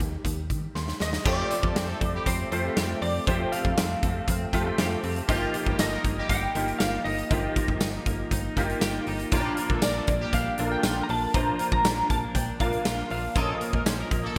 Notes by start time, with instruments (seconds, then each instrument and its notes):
Already playing: grand piano G3 A#3 D#4 G4, lead electric guitar G4
0.00 fm bass D#2, kick, closed hi-hat
0.25 fm bass D#2, kick, closed hi-hat
0.50 fm bass D#3, kick, closed hi-hat
0.75 fm bass D#2, grand piano C6, snare
0.88 snare
1.00 fm bass D#2, lead electric guitar D#5, snare
1.13 snare
1.25 fm bass F2, clean electric guitar F3 G4, horn section G3 G4, grand piano A3 C4 F4 G4, lead electric guitar D5, kick, crash
1.50 clean electric guitar A3, closed hi-hat
1.63 fm bass F2, horn section A3 A4, kick
1.75 fm bass F2, horn section C4 C5, clean electric guitar C4, snare, closed hi-hat
1.88 horn section A3 A4
2.01 fm bass F2, clean electric guitar A3, kick, closed hi-hat
2.14 horn section G3 G4
2.26 fm bass F2, clean electric guitar C4, lead electric guitar C5, kick, closed hi-hat
2.51 fm bass F2, grand piano A3 C4 F4 G4, clean electric guitar A3, lead electric guitar C5, closed hi-hat
2.77 fm bass F2, clean electric guitar G4, snare, closed hi-hat
3.02 fm bass F2, clean electric guitar C4, lead electric guitar D5, open hi-hat
3.27 fm bass F2, clean electric guitar F3 G4, grand piano A3 C4 F4 G4, lead electric guitar C5, kick, closed hi-hat
3.52 clean electric guitar A3, lead electric guitar F5, closed hi-hat
3.65 fm bass F2, kick
3.77 fm bass F2, clean electric guitar C4, snare, closed hi-hat
4.03 fm bass F2, clean electric guitar A3, kick, closed hi-hat
4.28 fm bass F2, clean electric guitar C4, kick, closed hi-hat
4.53 fm bass F2, grand piano A3 C4 F4 G4 A5, clean electric guitar A3, kick, closed hi-hat
4.66 grand piano G5
4.78 fm bass F2, clean electric guitar G4, grand piano F5, snare, closed hi-hat
5.03 fm bass F2, clean electric guitar C4, open hi-hat
5.16 closed hi-hat
5.28 fm bass G1, clean electric guitar F3 G4, horn section F3 F4, grand piano A#3 D#4 F4 G4, kick, closed hi-hat
5.54 clean electric guitar A#3, closed hi-hat
5.66 fm bass G1, horn section G3 G4, kick
5.79 fm bass G1, horn section A3 A4, clean electric guitar D#4, lead electric guitar D#5, snare, closed hi-hat, tambourine
5.92 horn section A#3 A#4
6.04 fm bass G1, clean electric guitar A#3, kick, closed hi-hat
6.18 horn section G3 G4
6.29 fm bass G1, clean electric guitar D#4, lead electric guitar G5, kick, closed hi-hat
6.54 fm bass G1, grand piano A#3 D#4 F4 G4, clean electric guitar A#3, closed hi-hat
6.68 closed hi-hat
6.79 fm bass G1, clean electric guitar G4, lead electric guitar F5, snare, closed hi-hat, tambourine
7.04 fm bass G1, clean electric guitar D#4, lead electric guitar D#5, open hi-hat
7.18 closed hi-hat
7.30 fm bass G1, clean electric guitar F3 G4, grand piano A#3 D#4 F4 G4, kick, closed hi-hat
7.56 clean electric guitar A#3, kick, closed hi-hat
7.68 fm bass G1, kick
7.80 fm bass G1, clean electric guitar D#4, snare, closed hi-hat, tambourine
8.06 fm bass G1, clean electric guitar A#3, kick, closed hi-hat
8.31 fm bass G1, clean electric guitar D#4, kick, closed hi-hat
8.56 fm bass G1, grand piano A#3 D#4 F4 G4, clean electric guitar A#3, kick, closed hi-hat
8.69 closed hi-hat
8.81 fm bass G1, clean electric guitar G4, snare, closed hi-hat, tambourine
9.07 fm bass G1, clean electric guitar D#4, open hi-hat
9.19 closed hi-hat
9.31 fm bass A#1, clean electric guitar F3 F4, horn section G3 G4, grand piano A#3 C#4 F4 A#4, kick, closed hi-hat
9.38 grand piano D4
9.57 clean electric guitar A#3, closed hi-hat
9.70 fm bass A#1, horn section A3 A4, kick
9.82 fm bass A#1, horn section A#3 A#4, clean electric guitar D4, lead electric guitar D5, snare, closed hi-hat, tambourine
9.96 horn section A3 A4
10.07 fm bass A#1, clean electric guitar A#3, kick, closed hi-hat
10.21 horn section G3 G4
10.33 fm bass A#1, clean electric guitar D4, lead electric guitar F5, kick, closed hi-hat
10.58 fm bass A#1, grand piano A#3 D4 F4 A4, clean electric guitar A#3, closed hi-hat
10.65 grand piano A#4
10.72 lead electric guitar G5
10.83 fm bass A#1, clean electric guitar F4, snare, closed hi-hat, tambourine
11.03 lead electric guitar A#5
11.09 fm bass A#1, clean electric guitar D4, lead electric guitar A5, open hi-hat
11.34 fm bass A#1, clean electric guitar F3 F4, grand piano A#3 D4 F4 C5, lead electric guitar A#5, kick, closed hi-hat
11.59 clean electric guitar A#3, closed hi-hat
11.72 fm bass A#1, lead electric guitar A#5, kick
11.85 fm bass A#1, clean electric guitar D4, snare, closed hi-hat, tambourine
12.09 fm bass A#1, clean electric guitar A#3, lead electric guitar A5, kick, closed hi-hat
12.35 fm bass A#1, clean electric guitar D4, lead electric guitar G5, kick, closed hi-hat
12.60 fm bass A#1, clean electric guitar A#3, grand piano A#3 D4 F4 A#4, lead electric guitar F5, kick, closed hi-hat
12.72 closed hi-hat
12.85 fm bass A#1, clean electric guitar F4, snare, closed hi-hat, tambourine
13.10 fm bass A#1, clean electric guitar D4, lead electric guitar F5, open hi-hat
13.35 fm bass A#1, clean electric guitar F3 F4, horn section A3 A4, grand piano A#3 C#4 F4 A#4, lead electric guitar D#5, kick, closed hi-hat
13.60 clean electric guitar A#3, closed hi-hat
13.73 fm bass A#1, horn section A#3 A#4, kick
13.86 fm bass A#1, horn section C4 C5, clean electric guitar C#4, snare, closed hi-hat, tambourine
13.99 horn section A#3 A#4
14.11 fm bass A#1, clean electric guitar A#3, kick, closed hi-hat
14.24 horn section A#3 A4